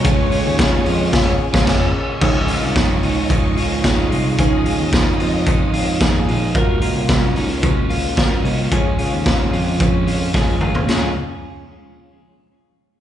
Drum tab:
CC |--------x---x---|x---------------|----------------|----------------|
RD |x---x-----------|----------------|----------------|----------------|
HH |p-o-p-o---------|--o-x-o-x-o-x-o-|x-o-x-o-x-o-x-o-|x-o-x-o-x-o-x-o-|
SD |----o---o--oo---|----o-------o---|----o-------o---|----o-------o---|
T2 |----------------|----------------|----------------|----------------|
FT |----------------|----------------|----------------|----------------|
BD |o---o---o--oo---|o---o---o---o---|o---o---o---o---|o---o---o---o---|

CC |----------------|x---------------|
RD |----------------|----------------|
HH |x-o-x-o-x-o-----|----------------|
SD |----o-------o---|o---------------|
T2 |--------------o-|----------------|
FT |---------------o|----------------|
BD |o---o---o---o---|----------------|